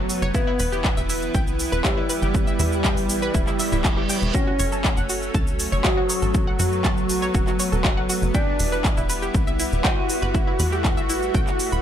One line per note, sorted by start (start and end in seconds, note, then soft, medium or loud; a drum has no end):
0.00 4.40 F#2 medium
0.00 4.40 C#3 medium
0.00 0.25 F#3 loud
0.00 0.30 F#3 medium
0.00 0.30 A3 medium
0.00 4.31 B3 medium
0.00 0.25 F#4 loud
0.00 1.39 F#4 medium
0.00 0.99 C#5 medium
0.10 open hi-hat loud
0.10 shaker medium
0.22 0.32 F#1 loud
0.22 0.28 C#5 loud
0.22 0.28 C#6 medium
0.22 shaker soft
0.35 4.31 E3 medium
0.35 0.81 B3 loud
0.35 5.05 E4 medium
0.35 0.40 E4 medium
0.35 4.31 E4 medium
0.35 0.81 B4 loud
0.35 0.40 E5 medium
0.35 kick loud
0.35 shaker soft
0.47 0.53 E4 medium
0.47 5.95 B4 medium
0.47 0.53 E5 medium
0.59 0.93 E1 loud
0.59 0.65 B4 medium
0.59 0.65 B5 medium
0.59 open hi-hat loud
0.59 shaker medium
0.72 0.78 G4 medium
0.72 0.78 G5 medium
0.72 shaker soft
0.84 kick loud
0.84 clap loud
0.84 shaker soft
0.97 1.30 E1 medium
0.97 1.01 E5 medium
0.97 1.01 E6 medium
0.97 shaker soft
1.10 1.13 E4 medium
1.10 1.13 E5 medium
1.10 open hi-hat loud
1.10 shaker medium
1.22 shaker soft
1.35 1.68 B1 medium
1.35 1.43 G5 medium
1.35 1.43 G6 medium
1.35 kick loud
1.35 shaker soft
1.47 shaker soft
1.60 open hi-hat loud
1.60 shaker medium
1.72 1.82 E1 medium
1.72 1.78 B4 loud
1.72 1.78 B5 medium
1.72 shaker soft
1.84 4.25 G3 loud
1.84 1.90 E4 medium
1.84 4.25 G4 loud
1.84 1.90 E5 medium
1.84 kick loud
1.84 clap loud
1.84 shaker soft
1.97 2.03 E4 medium
1.97 2.03 E5 medium
2.10 2.15 B4 medium
2.10 2.15 B5 medium
2.10 open hi-hat loud
2.10 shaker medium
2.22 2.55 G1 medium
2.22 2.28 G4 medium
2.22 2.28 G5 medium
2.22 shaker soft
2.34 kick loud
2.34 shaker soft
2.47 2.51 E5 medium
2.47 2.51 E6 medium
2.47 shaker soft
2.59 2.99 E2 loud
2.59 2.63 E4 medium
2.59 2.63 E5 medium
2.59 open hi-hat loud
2.59 shaker medium
2.72 shaker soft
2.84 2.93 G5 medium
2.84 2.93 G6 medium
2.84 kick loud
2.84 clap loud
2.84 shaker soft
2.97 3.30 A1 medium
2.97 open hi-hat medium
2.97 shaker soft
3.09 open hi-hat loud
3.09 shaker medium
3.22 3.28 B4 loud
3.22 3.28 B5 medium
3.22 shaker soft
3.34 3.45 D1 loud
3.34 3.40 E4 medium
3.34 3.40 E5 medium
3.34 kick loud
3.34 reverse cymbal medium
3.34 shaker soft
3.47 3.53 E4 medium
3.47 3.53 E5 medium
3.47 clap soft
3.47 shaker soft
3.59 3.65 E5 medium
3.59 3.65 E6 medium
3.59 open hi-hat loud
3.59 shaker medium
3.72 4.05 D1 medium
3.72 3.78 E4 medium
3.72 3.78 E5 medium
3.72 shaker soft
3.84 kick loud
3.84 clap loud
3.84 shaker soft
3.97 4.01 G4 medium
3.97 4.01 G5 medium
4.09 4.15 G5 medium
4.09 4.15 G6 medium
4.09 open hi-hat loud
4.09 shaker medium
4.22 4.32 E1 loud
4.22 shaker soft
4.34 8.31 F#3 medium
4.34 8.31 A3 medium
4.34 4.81 C#4 loud
4.34 6.33 C#4 medium
4.34 9.95 F#4 medium
4.34 4.40 F#4 medium
4.34 4.81 C#5 loud
4.34 4.40 F#5 medium
4.34 kick loud
4.34 shaker soft
4.47 4.53 F#4 medium
4.47 4.53 F#5 medium
4.59 4.93 F#1 loud
4.59 4.65 C#5 medium
4.59 4.65 C#6 medium
4.59 open hi-hat loud
4.59 shaker medium
4.72 4.78 A4 medium
4.72 4.78 A5 medium
4.72 shaker soft
4.84 kick loud
4.84 clap loud
4.84 shaker soft
4.97 5.30 F#1 medium
4.97 5.01 F#5 medium
4.97 5.01 F#6 medium
4.97 shaker soft
5.09 5.13 F#4 medium
5.09 5.13 F#5 medium
5.09 open hi-hat loud
5.09 shaker medium
5.22 11.82 F#5 medium
5.22 9.43 C#6 medium
5.22 shaker soft
5.35 5.68 C#2 medium
5.35 5.43 A5 medium
5.35 5.43 A6 medium
5.35 kick loud
5.35 shaker soft
5.47 shaker soft
5.60 open hi-hat loud
5.60 shaker medium
5.72 5.82 F#1 medium
5.72 5.78 C#5 loud
5.72 5.78 C#6 medium
5.72 shaker soft
5.84 8.25 F#3 loud
5.84 8.25 F#4 loud
5.84 5.90 F#4 medium
5.84 5.90 F#5 medium
5.84 kick loud
5.84 clap loud
5.84 shaker soft
5.97 6.03 F#4 medium
5.97 6.03 F#5 medium
6.09 6.15 C#5 medium
6.09 6.15 C#6 medium
6.09 open hi-hat loud
6.09 shaker medium
6.22 6.55 A1 medium
6.22 6.28 A4 medium
6.22 6.28 A5 medium
6.22 shaker soft
6.34 10.31 B3 medium
6.34 kick loud
6.34 shaker soft
6.47 6.51 F#5 medium
6.47 6.51 F#6 medium
6.59 6.99 F#2 loud
6.59 6.63 F#4 medium
6.59 6.63 F#5 medium
6.59 open hi-hat loud
6.59 shaker medium
6.72 shaker soft
6.85 6.93 A5 medium
6.85 6.93 A6 medium
6.85 kick loud
6.85 clap loud
6.85 shaker soft
6.97 7.30 B1 medium
6.97 shaker soft
7.10 open hi-hat loud
7.10 shaker medium
7.22 7.28 C#5 loud
7.22 7.28 C#6 medium
7.22 shaker soft
7.35 7.45 E1 loud
7.35 7.40 F#4 medium
7.35 7.40 F#5 medium
7.35 kick loud
7.35 shaker soft
7.47 7.53 F#4 medium
7.47 7.53 F#5 medium
7.47 clap soft
7.47 shaker soft
7.60 7.65 C#5 medium
7.60 7.65 C#6 medium
7.60 open hi-hat loud
7.60 shaker medium
7.72 8.05 E1 medium
7.72 7.78 A4 medium
7.72 7.78 A5 medium
7.72 shaker soft
7.85 kick loud
7.85 clap loud
7.85 shaker soft
7.97 8.01 F#5 medium
7.97 8.01 F#6 medium
8.10 8.13 F#4 medium
8.10 8.13 F#5 medium
8.10 open hi-hat loud
8.10 shaker medium
8.22 8.32 F#1 loud
8.22 shaker soft
8.34 11.82 G3 medium
8.34 8.81 D4 loud
8.34 11.82 E4 medium
8.34 8.81 D5 loud
8.34 8.43 G5 medium
8.34 8.43 G6 medium
8.34 kick loud
8.34 shaker soft
8.60 8.93 E1 loud
8.60 open hi-hat loud
8.60 shaker medium
8.72 8.78 B4 loud
8.72 8.78 B5 medium
8.72 shaker soft
8.85 8.90 E4 medium
8.85 8.90 E5 medium
8.85 kick loud
8.85 clap loud
8.85 shaker soft
8.97 9.30 E1 medium
8.97 9.03 E4 medium
8.97 9.03 E5 medium
8.97 shaker soft
9.05 11.82 B4 medium
9.10 9.15 B4 medium
9.10 9.15 B5 medium
9.10 open hi-hat loud
9.10 shaker medium
9.22 9.28 G4 medium
9.22 9.28 G5 medium
9.22 shaker soft
9.35 9.68 B1 medium
9.35 kick loud
9.35 shaker soft
9.47 9.51 E5 medium
9.47 9.51 E6 medium
9.47 shaker soft
9.60 9.63 E4 medium
9.60 9.63 E5 medium
9.60 open hi-hat loud
9.60 shaker medium
9.72 9.82 E1 medium
9.72 shaker soft
9.85 11.82 F#4 loud
9.85 11.82 F#5 loud
9.85 9.93 G5 medium
9.85 9.93 G6 medium
9.85 kick loud
9.85 clap loud
9.85 shaker soft
10.10 open hi-hat loud
10.10 shaker medium
10.22 10.55 G1 medium
10.22 10.28 B4 loud
10.22 10.28 B5 medium
10.22 shaker soft
10.35 11.82 A3 medium
10.35 10.40 E4 medium
10.35 10.40 E5 medium
10.35 kick loud
10.35 shaker soft
10.47 10.53 E4 medium
10.47 10.53 E5 medium
10.60 10.99 E2 loud
10.60 10.65 B4 medium
10.60 10.65 B5 medium
10.60 open hi-hat loud
10.60 shaker medium
10.72 10.78 G4 medium
10.72 10.78 G5 medium
10.72 shaker soft
10.85 kick loud
10.85 clap loud
10.85 shaker soft
10.97 11.30 A1 medium
10.97 11.01 E5 medium
10.97 11.01 E6 medium
10.97 shaker soft
11.10 11.13 E4 medium
11.10 11.13 E5 medium
11.10 open hi-hat loud
11.10 shaker medium
11.22 shaker soft
11.35 11.45 B1 medium
11.35 11.43 G5 medium
11.35 11.43 G6 medium
11.35 kick loud
11.35 shaker soft
11.47 clap soft
11.47 shaker soft
11.60 open hi-hat loud
11.60 shaker medium
11.72 11.82 E1 loud
11.72 11.80 B5 loud
11.72 shaker soft